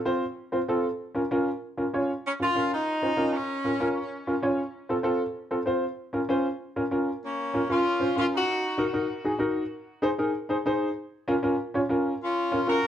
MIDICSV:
0, 0, Header, 1, 3, 480
1, 0, Start_track
1, 0, Key_signature, -5, "minor"
1, 0, Tempo, 311365
1, 1535, Time_signature, 4, 2, 24, 8
1, 11144, Key_signature, -5, "minor"
1, 19840, End_track
2, 0, Start_track
2, 0, Title_t, "Upright piano"
2, 0, Program_c, 0, 0
2, 82, Note_on_c, 0, 65, 74
2, 83, Note_on_c, 0, 60, 80
2, 92, Note_on_c, 0, 72, 91
2, 341, Note_off_c, 0, 60, 0
2, 341, Note_off_c, 0, 65, 0
2, 345, Note_off_c, 0, 72, 0
2, 803, Note_on_c, 0, 60, 76
2, 810, Note_on_c, 0, 65, 67
2, 818, Note_on_c, 0, 72, 76
2, 893, Note_off_c, 0, 60, 0
2, 896, Note_off_c, 0, 65, 0
2, 901, Note_off_c, 0, 72, 0
2, 1056, Note_on_c, 0, 60, 78
2, 1056, Note_on_c, 0, 65, 71
2, 1068, Note_on_c, 0, 69, 86
2, 1308, Note_off_c, 0, 60, 0
2, 1308, Note_off_c, 0, 65, 0
2, 1314, Note_off_c, 0, 69, 0
2, 1763, Note_on_c, 0, 61, 69
2, 1772, Note_on_c, 0, 65, 60
2, 1780, Note_on_c, 0, 70, 81
2, 1854, Note_off_c, 0, 61, 0
2, 1859, Note_off_c, 0, 65, 0
2, 1862, Note_off_c, 0, 70, 0
2, 2018, Note_on_c, 0, 61, 81
2, 2028, Note_on_c, 0, 65, 74
2, 2028, Note_on_c, 0, 70, 91
2, 2270, Note_off_c, 0, 61, 0
2, 2274, Note_off_c, 0, 65, 0
2, 2274, Note_off_c, 0, 70, 0
2, 2735, Note_on_c, 0, 65, 65
2, 2736, Note_on_c, 0, 61, 69
2, 2746, Note_on_c, 0, 70, 78
2, 2820, Note_off_c, 0, 65, 0
2, 2821, Note_off_c, 0, 61, 0
2, 2826, Note_off_c, 0, 70, 0
2, 2984, Note_on_c, 0, 61, 72
2, 2991, Note_on_c, 0, 65, 68
2, 2993, Note_on_c, 0, 73, 84
2, 3233, Note_off_c, 0, 61, 0
2, 3237, Note_off_c, 0, 65, 0
2, 3238, Note_off_c, 0, 73, 0
2, 3695, Note_on_c, 0, 61, 59
2, 3697, Note_on_c, 0, 65, 57
2, 3713, Note_on_c, 0, 70, 62
2, 3781, Note_off_c, 0, 61, 0
2, 3782, Note_off_c, 0, 65, 0
2, 3790, Note_off_c, 0, 70, 0
2, 3935, Note_on_c, 0, 61, 69
2, 3944, Note_on_c, 0, 65, 63
2, 3953, Note_on_c, 0, 70, 76
2, 4189, Note_off_c, 0, 61, 0
2, 4194, Note_off_c, 0, 65, 0
2, 4198, Note_off_c, 0, 70, 0
2, 4658, Note_on_c, 0, 61, 58
2, 4668, Note_on_c, 0, 65, 53
2, 4671, Note_on_c, 0, 72, 63
2, 4743, Note_off_c, 0, 61, 0
2, 4748, Note_off_c, 0, 65, 0
2, 4750, Note_off_c, 0, 72, 0
2, 4889, Note_on_c, 0, 61, 73
2, 4890, Note_on_c, 0, 65, 66
2, 4901, Note_on_c, 0, 70, 81
2, 5147, Note_off_c, 0, 61, 0
2, 5147, Note_off_c, 0, 65, 0
2, 5153, Note_off_c, 0, 70, 0
2, 5616, Note_on_c, 0, 61, 56
2, 5618, Note_on_c, 0, 65, 54
2, 5629, Note_on_c, 0, 70, 68
2, 5703, Note_off_c, 0, 61, 0
2, 5704, Note_off_c, 0, 65, 0
2, 5709, Note_off_c, 0, 70, 0
2, 5858, Note_on_c, 0, 61, 78
2, 5859, Note_on_c, 0, 65, 75
2, 5866, Note_on_c, 0, 70, 89
2, 6112, Note_off_c, 0, 61, 0
2, 6112, Note_off_c, 0, 65, 0
2, 6116, Note_off_c, 0, 70, 0
2, 6586, Note_on_c, 0, 61, 67
2, 6589, Note_on_c, 0, 65, 67
2, 6603, Note_on_c, 0, 70, 74
2, 6668, Note_off_c, 0, 61, 0
2, 6669, Note_off_c, 0, 65, 0
2, 6676, Note_off_c, 0, 70, 0
2, 6821, Note_on_c, 0, 61, 81
2, 6831, Note_on_c, 0, 65, 69
2, 6831, Note_on_c, 0, 73, 83
2, 7074, Note_off_c, 0, 61, 0
2, 7079, Note_off_c, 0, 65, 0
2, 7079, Note_off_c, 0, 73, 0
2, 7540, Note_on_c, 0, 60, 73
2, 7544, Note_on_c, 0, 65, 64
2, 7554, Note_on_c, 0, 69, 82
2, 7625, Note_off_c, 0, 60, 0
2, 7628, Note_off_c, 0, 65, 0
2, 7632, Note_off_c, 0, 69, 0
2, 7755, Note_on_c, 0, 60, 83
2, 7767, Note_on_c, 0, 65, 74
2, 7771, Note_on_c, 0, 69, 93
2, 8021, Note_off_c, 0, 60, 0
2, 8027, Note_off_c, 0, 65, 0
2, 8029, Note_off_c, 0, 69, 0
2, 8492, Note_on_c, 0, 60, 66
2, 8499, Note_on_c, 0, 69, 78
2, 8502, Note_on_c, 0, 65, 64
2, 8582, Note_off_c, 0, 60, 0
2, 8585, Note_off_c, 0, 69, 0
2, 8587, Note_off_c, 0, 65, 0
2, 8723, Note_on_c, 0, 60, 74
2, 8738, Note_on_c, 0, 65, 67
2, 8742, Note_on_c, 0, 72, 83
2, 8985, Note_off_c, 0, 60, 0
2, 8993, Note_off_c, 0, 65, 0
2, 8995, Note_off_c, 0, 72, 0
2, 9451, Note_on_c, 0, 61, 69
2, 9461, Note_on_c, 0, 65, 64
2, 9465, Note_on_c, 0, 70, 80
2, 9541, Note_off_c, 0, 61, 0
2, 9546, Note_off_c, 0, 65, 0
2, 9549, Note_off_c, 0, 70, 0
2, 9695, Note_on_c, 0, 61, 86
2, 9704, Note_on_c, 0, 65, 75
2, 9713, Note_on_c, 0, 72, 89
2, 9952, Note_off_c, 0, 61, 0
2, 9956, Note_off_c, 0, 65, 0
2, 9961, Note_off_c, 0, 72, 0
2, 10421, Note_on_c, 0, 65, 63
2, 10424, Note_on_c, 0, 61, 70
2, 10427, Note_on_c, 0, 70, 75
2, 10507, Note_off_c, 0, 65, 0
2, 10508, Note_off_c, 0, 61, 0
2, 10509, Note_off_c, 0, 70, 0
2, 10653, Note_on_c, 0, 61, 71
2, 10654, Note_on_c, 0, 65, 68
2, 10665, Note_on_c, 0, 70, 86
2, 10911, Note_off_c, 0, 61, 0
2, 10911, Note_off_c, 0, 65, 0
2, 10917, Note_off_c, 0, 70, 0
2, 11617, Note_on_c, 0, 61, 74
2, 11627, Note_on_c, 0, 65, 68
2, 11632, Note_on_c, 0, 70, 75
2, 11705, Note_off_c, 0, 61, 0
2, 11710, Note_off_c, 0, 65, 0
2, 11712, Note_off_c, 0, 70, 0
2, 11862, Note_on_c, 0, 61, 64
2, 11864, Note_on_c, 0, 65, 59
2, 11865, Note_on_c, 0, 70, 68
2, 12031, Note_off_c, 0, 61, 0
2, 12032, Note_off_c, 0, 65, 0
2, 12032, Note_off_c, 0, 70, 0
2, 12328, Note_on_c, 0, 61, 61
2, 12339, Note_on_c, 0, 65, 54
2, 12343, Note_on_c, 0, 72, 68
2, 12420, Note_off_c, 0, 61, 0
2, 12425, Note_off_c, 0, 65, 0
2, 12428, Note_off_c, 0, 72, 0
2, 12578, Note_on_c, 0, 61, 64
2, 12584, Note_on_c, 0, 65, 59
2, 12596, Note_on_c, 0, 70, 68
2, 12917, Note_off_c, 0, 61, 0
2, 12920, Note_off_c, 0, 65, 0
2, 12926, Note_off_c, 0, 70, 0
2, 13531, Note_on_c, 0, 63, 90
2, 13534, Note_on_c, 0, 66, 77
2, 13547, Note_on_c, 0, 70, 93
2, 13621, Note_off_c, 0, 63, 0
2, 13622, Note_off_c, 0, 66, 0
2, 13629, Note_off_c, 0, 70, 0
2, 13769, Note_on_c, 0, 63, 71
2, 13781, Note_on_c, 0, 70, 82
2, 13785, Note_on_c, 0, 66, 67
2, 13944, Note_off_c, 0, 63, 0
2, 13950, Note_off_c, 0, 70, 0
2, 13952, Note_off_c, 0, 66, 0
2, 14251, Note_on_c, 0, 63, 70
2, 14259, Note_on_c, 0, 66, 68
2, 14263, Note_on_c, 0, 68, 79
2, 14341, Note_off_c, 0, 63, 0
2, 14345, Note_off_c, 0, 66, 0
2, 14347, Note_off_c, 0, 68, 0
2, 14469, Note_on_c, 0, 63, 78
2, 14481, Note_on_c, 0, 66, 72
2, 14485, Note_on_c, 0, 70, 86
2, 14821, Note_off_c, 0, 63, 0
2, 14827, Note_off_c, 0, 66, 0
2, 14830, Note_off_c, 0, 70, 0
2, 15447, Note_on_c, 0, 63, 86
2, 15452, Note_on_c, 0, 68, 82
2, 15464, Note_on_c, 0, 72, 98
2, 15538, Note_off_c, 0, 63, 0
2, 15541, Note_off_c, 0, 68, 0
2, 15547, Note_off_c, 0, 72, 0
2, 15700, Note_on_c, 0, 63, 80
2, 15706, Note_on_c, 0, 68, 72
2, 15710, Note_on_c, 0, 70, 87
2, 15868, Note_off_c, 0, 63, 0
2, 15871, Note_off_c, 0, 68, 0
2, 15873, Note_off_c, 0, 70, 0
2, 16172, Note_on_c, 0, 63, 76
2, 16180, Note_on_c, 0, 68, 70
2, 16187, Note_on_c, 0, 72, 80
2, 16260, Note_off_c, 0, 63, 0
2, 16264, Note_off_c, 0, 68, 0
2, 16268, Note_off_c, 0, 72, 0
2, 16428, Note_on_c, 0, 63, 81
2, 16436, Note_on_c, 0, 68, 74
2, 16442, Note_on_c, 0, 72, 92
2, 16760, Note_off_c, 0, 63, 0
2, 16764, Note_off_c, 0, 68, 0
2, 16767, Note_off_c, 0, 72, 0
2, 17381, Note_on_c, 0, 61, 85
2, 17390, Note_on_c, 0, 65, 80
2, 17392, Note_on_c, 0, 70, 94
2, 17464, Note_off_c, 0, 61, 0
2, 17468, Note_off_c, 0, 65, 0
2, 17469, Note_off_c, 0, 70, 0
2, 17615, Note_on_c, 0, 61, 80
2, 17629, Note_on_c, 0, 65, 73
2, 17633, Note_on_c, 0, 70, 82
2, 17785, Note_off_c, 0, 61, 0
2, 17792, Note_off_c, 0, 65, 0
2, 17793, Note_off_c, 0, 70, 0
2, 18103, Note_on_c, 0, 61, 74
2, 18112, Note_on_c, 0, 65, 67
2, 18118, Note_on_c, 0, 73, 77
2, 18184, Note_off_c, 0, 61, 0
2, 18189, Note_off_c, 0, 65, 0
2, 18192, Note_off_c, 0, 73, 0
2, 18336, Note_on_c, 0, 61, 77
2, 18344, Note_on_c, 0, 65, 71
2, 18353, Note_on_c, 0, 70, 86
2, 18672, Note_off_c, 0, 61, 0
2, 18676, Note_off_c, 0, 65, 0
2, 18681, Note_off_c, 0, 70, 0
2, 19296, Note_on_c, 0, 61, 73
2, 19301, Note_on_c, 0, 65, 66
2, 19307, Note_on_c, 0, 70, 81
2, 19380, Note_off_c, 0, 61, 0
2, 19382, Note_off_c, 0, 65, 0
2, 19385, Note_off_c, 0, 70, 0
2, 19532, Note_on_c, 0, 61, 64
2, 19538, Note_on_c, 0, 65, 62
2, 19543, Note_on_c, 0, 70, 71
2, 19702, Note_off_c, 0, 61, 0
2, 19705, Note_off_c, 0, 65, 0
2, 19707, Note_off_c, 0, 70, 0
2, 19840, End_track
3, 0, Start_track
3, 0, Title_t, "Saxophone section"
3, 0, Program_c, 1, 65
3, 3483, Note_on_c, 1, 61, 78
3, 3585, Note_off_c, 1, 61, 0
3, 3737, Note_on_c, 1, 65, 96
3, 4166, Note_off_c, 1, 65, 0
3, 4222, Note_on_c, 1, 63, 84
3, 5148, Note_on_c, 1, 61, 78
3, 5162, Note_off_c, 1, 63, 0
3, 6585, Note_off_c, 1, 61, 0
3, 11155, Note_on_c, 1, 61, 68
3, 11161, Note_on_c, 1, 58, 54
3, 11820, Note_off_c, 1, 61, 0
3, 11823, Note_off_c, 1, 58, 0
3, 11867, Note_on_c, 1, 61, 68
3, 11879, Note_on_c, 1, 65, 89
3, 12535, Note_off_c, 1, 61, 0
3, 12542, Note_off_c, 1, 65, 0
3, 12594, Note_on_c, 1, 61, 73
3, 12609, Note_on_c, 1, 65, 89
3, 12700, Note_off_c, 1, 61, 0
3, 12711, Note_off_c, 1, 65, 0
3, 12863, Note_on_c, 1, 63, 74
3, 12868, Note_on_c, 1, 66, 98
3, 13741, Note_off_c, 1, 63, 0
3, 13744, Note_off_c, 1, 66, 0
3, 18848, Note_on_c, 1, 65, 77
3, 18849, Note_on_c, 1, 61, 63
3, 19502, Note_off_c, 1, 65, 0
3, 19503, Note_off_c, 1, 61, 0
3, 19557, Note_on_c, 1, 66, 78
3, 19558, Note_on_c, 1, 70, 97
3, 19840, Note_off_c, 1, 66, 0
3, 19840, Note_off_c, 1, 70, 0
3, 19840, End_track
0, 0, End_of_file